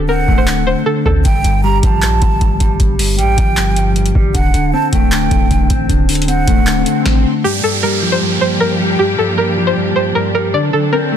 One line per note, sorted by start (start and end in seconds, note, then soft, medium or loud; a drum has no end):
0.00 0.26 D1 loud
0.00 0.46 D3 medium
0.09 1.04 C4 medium
0.09 0.36 A#4 medium
0.09 0.82 F#5 medium
0.28 0.75 D1 loud
0.28 1.25 A3 medium
0.28 kick loud
0.38 0.45 C5 medium
0.47 0.66 D3 medium
0.47 clap loud
0.67 0.84 D3 medium
0.67 0.82 C5 medium
0.86 1.25 D3 medium
0.86 1.01 A4 medium
1.06 1.24 D2 loud
1.06 1.25 C4 medium
1.06 1.20 A4 medium
1.06 kick medium
1.25 1.44 G1 loud
1.25 1.43 G2 medium
1.25 1.61 G5 loud
1.25 kick loud
1.25 closed hi-hat medium
1.44 1.81 G1 loud
1.44 2.01 G2 medium
1.44 closed hi-hat medium
1.64 2.59 G3 medium
1.64 1.82 A#5 medium
1.83 2.04 G1 loud
1.83 2.80 F3 medium
1.83 2.76 A5 medium
1.83 kick loud
1.83 closed hi-hat medium
2.02 2.21 A#1 loud
2.02 2.20 G2 medium
2.02 clap loud
2.02 closed hi-hat medium
2.22 2.40 G1 loud
2.22 2.40 G2 medium
2.22 kick loud
2.22 closed hi-hat medium
2.41 2.60 G1 loud
2.41 2.79 G2 medium
2.41 kick medium
2.41 closed hi-hat medium
2.60 2.79 G1 loud
2.60 3.17 G3 medium
2.60 kick medium
2.60 closed hi-hat medium
2.80 3.20 G1 loud
2.80 2.98 G2 medium
2.80 kick loud
2.80 closed hi-hat medium
2.99 3.56 G2 medium
2.99 open hi-hat medium
3.18 3.37 A1 loud
3.18 4.14 G3 medium
3.18 3.92 G5 loud
3.18 closed hi-hat medium
3.38 4.12 G1 loud
3.38 4.34 F3 medium
3.38 kick loud
3.38 closed hi-hat medium
3.57 3.75 G2 loud
3.57 clap loud
3.57 closed hi-hat medium
3.76 3.95 G2 medium
3.76 closed hi-hat medium
3.96 4.35 G2 medium
3.96 closed hi-hat medium
4.06 closed hi-hat medium
4.15 4.34 G1 loud
4.15 4.35 G3 medium
4.15 kick medium
4.34 4.53 D1 loud
4.34 4.53 D3 medium
4.34 4.71 F#5 loud
4.34 kick loud
4.34 closed hi-hat medium
4.54 4.73 D1 loud
4.54 5.11 D3 medium
4.54 closed hi-hat medium
4.73 5.69 C4 medium
4.73 4.92 A5 loud
4.92 5.30 D1 loud
4.92 5.89 A3 medium
4.92 5.85 G5 medium
4.92 kick loud
4.92 closed hi-hat medium
5.12 5.30 D3 medium
5.12 clap loud
5.12 closed hi-hat medium
5.31 5.50 D1 loud
5.31 5.49 D3 medium
5.31 kick loud
5.31 closed hi-hat medium
5.51 5.69 D1 loud
5.51 5.88 D3 medium
5.51 kick medium
5.51 closed hi-hat medium
5.70 5.89 A1 loud
5.70 6.27 C4 medium
5.70 kick medium
5.70 closed hi-hat medium
5.89 6.45 D1 loud
5.89 6.08 D3 loud
5.89 kick loud
5.89 closed hi-hat medium
5.89 swell medium
6.09 6.65 D3 medium
6.09 closed hi-hat soft
6.09 open hi-hat medium
6.15 closed hi-hat medium
6.22 closed hi-hat medium
6.28 7.25 C4 medium
6.28 7.01 F#5 medium
6.28 closed hi-hat medium
6.48 6.85 D1 loud
6.48 7.44 A3 medium
6.48 kick loud
6.48 closed hi-hat medium
6.66 6.85 D3 loud
6.66 clap loud
6.66 closed hi-hat medium
6.86 7.44 D3 medium
6.86 closed hi-hat medium
7.06 kick loud
7.06 snare medium
7.44 7.62 G2 medium
7.44 10.51 F3 medium
7.44 10.51 A#3 medium
7.44 11.17 D4 medium
7.44 7.59 G4 medium
7.44 10.51 G4 medium
7.44 downlifter medium
7.63 8.20 G2 medium
7.63 7.79 A4 medium
7.83 8.79 G3 loud
7.83 8.10 A#4 medium
8.02 8.99 F3 medium
8.12 8.19 C5 medium
8.21 8.40 G2 loud
8.41 8.60 G2 medium
8.41 8.56 C5 medium
8.60 8.98 G2 medium
8.60 8.75 A#4 medium
8.80 9.37 G3 loud
8.99 9.17 G2 medium
8.99 9.14 G4 medium
9.18 9.75 G2 medium
9.18 9.33 A4 medium
9.38 10.34 G3 medium
9.38 9.65 A#4 medium
9.57 10.54 F3 medium
9.67 9.74 C5 medium
9.76 9.95 G2 loud
9.96 10.14 G2 medium
9.96 10.11 C5 medium
10.15 10.54 G2 medium
10.15 10.30 A#4 medium
10.35 10.54 G3 medium
10.35 10.49 A#4 medium
10.54 10.72 D3 medium
10.54 11.17 F#3 medium
10.54 11.17 C4 medium
10.54 11.17 A4 medium
10.54 10.69 D5 medium
10.73 11.17 D3 medium
10.73 10.88 A4 medium
10.93 11.17 C4 loud
10.93 11.17 A#4 medium
11.12 11.17 A3 medium